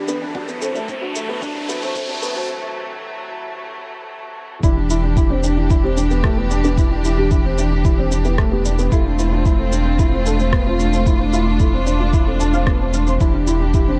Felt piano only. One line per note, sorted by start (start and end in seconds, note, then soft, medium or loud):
0.08 0.18 B3 medium
0.22 0.32 D4 medium
0.35 0.45 D4 loud
0.49 0.59 B3 medium
0.62 0.72 C4 medium
0.76 0.86 A3 medium
0.89 0.99 C4 medium
1.02 1.12 D4 medium
1.16 1.26 A3 medium
1.29 1.39 B3 medium
1.42 1.52 D4 loud
1.55 1.66 D4 medium
1.69 1.79 B3 medium
1.82 1.92 C4 medium
1.96 2.06 C4 medium
2.09 2.19 D4 medium
2.22 2.33 B3 medium
2.36 2.46 C4 medium
4.64 4.74 E4 medium
4.77 4.87 D4 medium
4.90 5.00 E4 medium
5.04 5.14 D4 medium
5.17 5.27 E4 medium
5.30 5.40 C4 medium
5.44 5.54 D4 medium
5.57 5.67 D4 medium
5.70 5.80 E4 medium
5.84 5.94 C4 medium
5.97 6.07 D4 medium
6.11 6.21 B3 medium
6.24 6.34 A3 medium
6.37 6.48 B3 medium
6.51 6.61 D4 medium
6.64 6.74 B3 medium
6.78 6.88 E4 medium
6.91 7.01 D4 medium
7.05 7.15 E4 medium
7.18 7.28 D4 medium
7.31 7.41 E4 medium
7.45 7.55 C4 medium
7.58 7.68 D4 medium
7.71 7.82 D4 medium
7.85 7.95 E4 medium
7.98 8.08 C4 medium
8.12 8.22 D4 medium
8.25 8.35 B3 medium
8.38 8.49 A3 medium
8.52 8.62 B3 medium
8.65 8.76 D4 medium
8.79 8.89 B3 medium
8.92 9.02 E4 loud
9.06 9.16 D4 medium
9.19 9.29 E4 medium
9.32 9.42 D4 medium
9.46 9.56 E4 medium
9.59 9.69 C4 medium
9.72 9.82 D4 medium
9.86 9.96 D4 medium
9.99 10.09 E4 medium
10.12 10.23 C4 medium
10.26 10.36 D4 medium
10.39 10.50 C4 medium
10.53 10.63 B3 medium
10.66 10.76 C4 medium
10.79 10.90 D4 medium
10.93 11.03 C4 medium
11.07 11.17 E4 medium
11.20 11.30 D4 medium
11.33 11.43 E4 medium
11.47 11.57 D4 medium
11.60 11.70 E4 medium
11.73 11.83 C4 medium
11.87 11.97 D4 medium
12.00 12.10 D4 medium
12.13 12.24 E4 medium
12.27 12.37 C4 medium
12.40 12.50 D4 medium
12.53 12.64 C4 medium
12.67 12.77 B3 medium
12.80 12.90 C4 medium
12.94 13.04 D4 medium
13.07 13.17 C4 medium
13.20 13.31 E4 medium
13.34 13.44 D4 medium
13.47 13.57 E4 medium
13.61 13.71 D4 medium
13.74 13.84 E4 medium
13.87 13.98 C4 medium